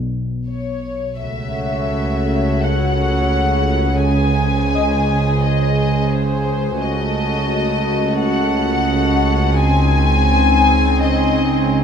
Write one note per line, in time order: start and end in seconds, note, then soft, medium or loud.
0.00 1.18 B1 medium
0.48 1.17 C#5 soft
1.20 6.79 C#2 soft
1.20 6.79 C#2 medium
1.20 6.80 C#3 soft
1.20 4.00 A3 soft
1.20 4.00 F#4 soft
1.20 4.01 A4 soft
1.20 4.01 C#5 soft
1.20 2.61 E5 soft
1.20 4.01 F#5 soft
2.63 4.74 F#4 soft
2.63 4.04 F#5 soft
2.63 4.74 F#5 soft
4.02 6.79 G#3 soft
4.02 6.83 G#4 soft
4.02 6.85 C5 soft
4.02 5.40 G#5 soft
4.06 6.85 G#4 soft
4.06 6.85 G#5 soft
4.75 8.65 D#5 soft
5.45 6.14 D#5 soft
6.13 6.83 C5 soft
6.81 11.84 C#2 soft
6.81 11.84 C#2 medium
6.81 11.84 C#3 soft
6.81 9.57 A3 soft
6.81 9.57 F#4 soft
6.81 9.62 F#4 soft
6.81 8.21 D#5 soft
6.81 9.62 D#5 soft
6.81 9.62 A5 soft
8.22 9.58 F#5 medium
9.60 11.84 C4 soft
9.60 11.84 D#4 soft
9.60 11.84 G#4 soft
9.60 11.84 C5 soft
9.60 10.97 G#5 medium
9.60 11.84 G#5 soft
9.60 11.84 C6 soft
11.01 11.70 D#5 soft